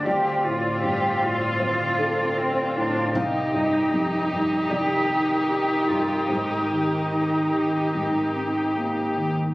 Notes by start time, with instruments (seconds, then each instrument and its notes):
Already playing: string section D5
0.06 felt piano D2 D5, string section C4 F4, viola C4, violin F4, cello G4
0.44 felt piano A2, cello F4
0.83 felt piano G2, cello G4
1.22 felt piano A2, cello F4
1.60 felt piano D2 C5
1.99 felt piano D4 A4
2.37 felt piano C4, cello C4
2.76 felt piano A2, cello D4
3.14 felt piano C2 F5, string section D#3 G4, cello D#4, viola D#4, violin G4
3.54 felt piano G2 D#5
3.92 felt piano F2
4.31 felt piano G2
4.70 felt piano C2 D5, cello G4
5.10 felt piano D#4
5.49 felt piano D4, cello G4
5.88 felt piano G2, cello F4
6.29 felt piano G#2 C5, string section C4, cello D#4
6.71 felt piano D#3
7.12 felt piano D#3
7.53 felt piano D#3
7.94 felt piano G#2
8.34 felt piano C4
8.75 felt piano A#3
9.17 felt piano D#3